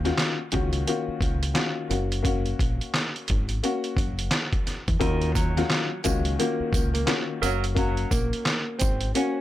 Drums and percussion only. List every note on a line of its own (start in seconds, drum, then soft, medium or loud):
0.05 snare soft
0.05 closed hi-hat soft
0.18 snare loud
0.18 clap medium
0.18 closed hi-hat medium
0.52 kick medium
0.52 closed hi-hat medium
0.73 closed hi-hat medium
0.87 closed hi-hat medium
1.21 kick loud
1.21 closed hi-hat medium
1.43 closed hi-hat medium
1.55 snare loud
1.55 clap medium
1.55 closed hi-hat medium
1.91 closed hi-hat medium
2.12 closed hi-hat medium
2.25 kick loud
2.25 closed hi-hat loud
2.46 closed hi-hat soft
2.59 kick loud
2.59 closed hi-hat medium
2.81 closed hi-hat soft
2.94 snare loud
2.94 clap medium
2.94 closed hi-hat medium
3.16 closed hi-hat soft
3.28 kick medium
3.28 closed hi-hat medium
3.49 closed hi-hat medium
3.64 closed hi-hat medium
3.84 closed hi-hat soft
3.97 kick loud
3.97 closed hi-hat medium
4.19 closed hi-hat medium
4.31 snare loud
4.31 clap medium
4.31 closed hi-hat medium
4.53 kick medium
4.53 closed hi-hat soft
4.67 snare soft
4.67 closed hi-hat medium
4.88 kick medium
4.88 closed hi-hat medium
5.01 kick loud
5.01 closed hi-hat loud
5.21 closed hi-hat soft
5.35 kick loud
5.35 closed hi-hat medium
5.35 tambourine medium
5.57 snare soft
5.57 closed hi-hat soft
5.70 snare loud
5.70 clap medium
5.70 closed hi-hat medium
6.04 kick loud
6.04 closed hi-hat medium
6.04 tambourine medium
6.25 closed hi-hat medium
6.40 closed hi-hat medium
6.73 kick loud
6.73 closed hi-hat medium
6.73 tambourine medium
6.95 closed hi-hat medium
7.07 snare loud
7.07 clap medium
7.07 closed hi-hat medium
7.43 closed hi-hat medium
7.43 tambourine medium
7.64 closed hi-hat medium
7.77 kick loud
7.77 closed hi-hat loud
7.97 closed hi-hat soft
8.11 kick loud
8.11 closed hi-hat medium
8.11 tambourine medium
8.33 closed hi-hat soft
8.46 snare loud
8.46 clap medium
8.46 closed hi-hat medium
8.79 kick loud
8.79 closed hi-hat medium
8.79 tambourine medium
9.01 closed hi-hat medium
9.15 closed hi-hat medium